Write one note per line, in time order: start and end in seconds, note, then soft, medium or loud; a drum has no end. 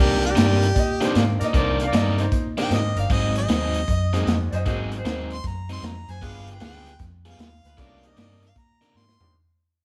0.00 0.34 C2 medium
0.00 0.27 C3 medium
0.00 0.27 D#3 medium
0.00 0.27 A#3 medium
0.00 0.28 D4 loud
0.00 0.20 D#4 medium
0.00 0.24 G4 loud
0.00 0.21 A#4 medium
0.00 0.21 D5 medium
0.23 1.38 G4 loud
0.23 closed hi-hat medium
0.29 0.74 D#4 medium
0.29 0.75 A#4 medium
0.29 0.75 D5 medium
0.36 0.73 G2 loud
0.36 0.66 C3 medium
0.36 0.66 D#3 medium
0.36 0.66 A#3 medium
0.36 0.66 D4 medium
0.36 snare loud
0.36 closed hi-hat loud
0.62 closed hi-hat medium
0.75 1.12 A#2 medium
0.75 0.77 D5 medium
0.75 kick loud
0.75 closed hi-hat medium
0.79 1.02 D#5 medium
1.00 1.23 C3 medium
1.00 1.23 D#3 loud
1.00 1.51 A#3 medium
1.00 1.22 A#3 medium
1.00 1.51 C4 medium
1.00 1.51 D4 medium
1.00 1.22 D4 loud
1.00 1.51 D#4 medium
1.00 1.51 G4 medium
1.00 1.16 C5 medium
1.00 snare soft
1.00 closed hi-hat medium
1.15 1.39 G#2 medium
1.15 1.41 F5 medium
1.15 snare loud
1.15 closed hi-hat medium
1.39 1.53 A#2 medium
1.39 1.48 D#4 medium
1.39 1.48 A#4 medium
1.39 1.41 D5 medium
1.39 1.49 D5 medium
1.39 snare soft
1.39 closed hi-hat medium
1.44 1.56 D#5 medium
1.54 1.90 C2 medium
1.54 1.83 C3 medium
1.54 1.84 D#3 loud
1.54 1.84 A#3 medium
1.54 1.84 D4 loud
1.54 1.77 D#4 medium
1.54 1.77 A#4 medium
1.54 1.80 C5 medium
1.54 1.77 D5 loud
1.54 kick loud
1.54 closed hi-hat medium
1.80 1.94 F5 medium
1.80 closed hi-hat medium
1.85 2.30 D#4 medium
1.85 2.31 A#4 medium
1.85 2.31 D5 loud
1.93 2.30 G2 loud
1.93 2.22 C3 medium
1.93 2.23 D#3 medium
1.93 2.23 A#3 medium
1.93 2.23 D4 medium
1.93 2.19 D#5 medium
1.93 snare loud
1.93 closed hi-hat medium
2.18 2.44 D#4 medium
2.18 2.45 C5 medium
2.18 closed hi-hat medium
2.32 2.69 A#2 medium
2.32 kick loud
2.32 closed hi-hat medium
2.57 2.80 C3 medium
2.57 2.79 D#3 medium
2.57 3.07 A#3 medium
2.57 2.79 A#3 loud
2.57 3.07 C4 medium
2.57 2.79 D4 loud
2.57 3.08 D4 medium
2.57 3.08 D#4 medium
2.57 3.08 G4 medium
2.57 2.72 G5 loud
2.57 snare soft
2.57 closed hi-hat medium
2.71 2.95 G#2 medium
2.71 2.97 D#5 medium
2.71 snare medium
2.71 closed hi-hat medium
2.96 3.09 G1 medium
2.96 3.04 D#4 medium
2.96 3.04 A#4 medium
2.96 3.05 D5 medium
2.96 3.11 F5 medium
2.96 closed hi-hat medium
3.09 3.46 G#1 loud
3.09 3.40 G#2 medium
3.09 3.40 F#3 medium
3.09 3.40 C4 medium
3.09 3.40 D#4 loud
3.09 3.32 F#4 medium
3.09 3.33 G#4 medium
3.09 3.33 C5 medium
3.09 3.36 D#5 loud
3.09 kick loud
3.09 closed hi-hat medium
3.35 4.50 D#5 loud
3.35 closed hi-hat medium
3.41 3.86 F#4 medium
3.41 3.86 G#4 medium
3.41 3.87 C5 medium
3.48 3.86 D#2 medium
3.48 3.78 G#2 medium
3.48 3.79 F#3 medium
3.48 3.79 C4 medium
3.48 3.79 D#4 medium
3.48 snare loud
3.48 closed hi-hat medium
3.74 closed hi-hat medium
3.88 4.24 F#2 loud
3.88 4.52 D#5 medium
3.88 kick loud
3.88 closed hi-hat medium
4.13 4.35 G#2 medium
4.13 4.35 F#3 medium
4.13 4.63 A#3 medium
4.13 4.63 C4 medium
4.13 4.35 C4 loud
4.13 4.35 D#4 loud
4.13 4.64 D#4 medium
4.13 4.64 F#4 medium
4.13 4.64 G#4 medium
4.13 closed hi-hat medium
4.26 4.51 F2 medium
4.26 snare loud
4.26 closed hi-hat medium
4.51 4.65 F#2 medium
4.51 4.60 F#4 medium
4.51 4.61 G#4 medium
4.51 4.61 C5 medium
4.51 4.52 D5 medium
4.51 closed hi-hat medium
4.55 5.17 D#5 medium
4.65 5.03 G#1 loud
4.65 4.96 G#2 medium
4.65 4.96 F#3 loud
4.65 5.03 A#3 medium
4.65 5.03 C4 medium
4.65 4.96 C4 medium
4.65 5.04 D#4 medium
4.65 4.96 D#4 loud
4.65 5.04 F#4 medium
4.65 4.89 F#4 medium
4.65 5.04 G#4 medium
4.65 4.89 G#4 medium
4.65 4.90 C5 medium
4.65 kick loud
4.65 snare soft
4.65 closed hi-hat medium
4.92 closed hi-hat medium
4.98 5.43 F#4 medium
4.98 5.43 G#4 medium
4.98 5.43 C5 medium
5.05 5.41 D#2 medium
5.05 5.35 G#2 medium
5.05 5.35 F#3 medium
5.05 5.28 A#3 medium
5.05 5.28 C4 medium
5.05 5.35 C4 medium
5.05 5.28 D#4 medium
5.05 5.35 D#4 medium
5.05 5.28 F#4 medium
5.05 5.28 A#4 medium
5.05 snare loud
5.05 closed hi-hat medium
5.30 5.45 C6 loud
5.30 closed hi-hat medium
5.44 5.81 F#2 loud
5.44 5.70 A#5 medium
5.44 kick loud
5.44 snare soft
5.44 closed hi-hat medium
5.69 5.91 G#2 medium
5.69 5.91 F#3 medium
5.69 5.91 C4 loud
5.69 5.91 D#4 loud
5.69 5.88 C6 medium
5.69 closed hi-hat medium
5.82 6.07 F2 medium
5.82 6.13 A#5 medium
5.82 snare loud
5.82 closed hi-hat medium
6.08 6.21 F#2 medium
6.08 6.17 F#4 medium
6.08 6.17 G#4 medium
6.08 6.17 C5 medium
6.08 6.27 G#5 medium
6.08 snare soft
6.08 closed hi-hat medium
6.21 6.58 G1 medium
6.21 6.51 G3 medium
6.21 6.59 G#3 medium
6.21 6.51 B3 medium
6.21 6.60 B3 medium
6.21 6.59 D4 medium
6.21 6.45 F4 medium
6.21 6.52 F4 medium
6.21 6.59 F4 medium
6.21 6.60 G4 medium
6.21 6.45 G#4 medium
6.21 6.52 G#4 medium
6.21 6.45 B4 medium
6.21 6.48 F5 loud
6.21 kick loud
6.21 closed hi-hat medium
6.47 closed hi-hat medium
6.51 6.98 F4 medium
6.51 6.99 G#4 medium
6.51 6.99 B4 medium
6.51 6.63 G5 medium
6.60 6.97 D2 medium
6.60 6.90 G3 medium
6.60 6.84 G#3 medium
6.60 6.91 B3 medium
6.60 6.84 B3 medium
6.60 6.84 D4 soft
6.60 6.84 F4 medium
6.60 6.91 F4 medium
6.60 6.84 G4 medium
6.60 6.91 G#4 medium
6.60 snare loud
6.60 closed hi-hat medium
6.65 7.01 G5 loud
6.86 closed hi-hat medium
6.99 7.36 F2 loud
6.99 kick medium
6.99 snare soft
6.99 closed hi-hat medium
7.25 7.47 G3 medium
7.25 7.47 B3 medium
7.25 7.47 F4 medium
7.25 7.47 G#4 loud
7.25 closed hi-hat medium
7.29 7.41 F5 medium
7.38 7.62 D#2 medium
7.38 snare loud
7.38 closed hi-hat medium
7.43 8.09 F5 medium
7.64 7.77 D2 medium
7.64 7.72 F4 medium
7.64 7.73 G#4 medium
7.64 7.73 B4 medium
7.64 snare soft
7.64 closed hi-hat medium
7.77 8.14 C2 medium
7.77 8.07 C3 medium
7.77 8.07 D#3 medium
7.77 8.01 A3 medium
7.77 8.08 A#3 medium
7.77 8.01 B3 medium
7.77 8.01 C#4 medium
7.77 8.08 D4 medium
7.77 8.01 D4 medium
7.77 8.00 D#4 medium
7.77 8.02 F#4 medium
7.77 8.01 A#4 medium
7.77 8.01 D5 medium
7.77 kick loud
7.77 closed hi-hat medium
8.03 8.38 A#3 medium
8.03 8.38 C4 soft
8.03 8.38 D4 soft
8.03 8.38 D#4 soft
8.03 8.38 G4 medium
8.03 closed hi-hat medium
8.07 8.55 A#4 medium
8.07 8.55 D5 medium
8.07 8.19 D#5 medium
8.17 8.54 G2 medium
8.17 8.46 C3 medium
8.17 8.47 D#3 medium
8.17 8.47 A#3 medium
8.17 8.47 D4 medium
8.17 8.43 D#5 medium
8.17 snare loud
8.17 closed hi-hat medium
8.42 8.57 F5 medium
8.42 closed hi-hat medium
8.56 8.92 A#2 loud
8.56 8.99 A#5 medium
8.56 kick loud
8.56 closed hi-hat medium
8.81 9.03 C3 medium
8.81 9.03 D#3 loud
8.81 9.03 A#3 loud
8.81 9.03 D4 loud
8.81 snare soft
8.81 closed hi-hat medium
8.95 9.19 G#2 medium
8.95 9.34 C6 medium
8.95 snare medium
9.09 snare medium
9.20 9.33 A#2 medium
9.20 9.32 A#3 medium
9.20 9.33 C4 medium
9.20 9.33 D4 medium
9.20 9.28 D#4 medium
9.20 9.33 D#4 medium
9.20 9.33 G4 medium
9.20 9.28 A#4 medium
9.20 9.29 D5 medium
9.20 floor tom loud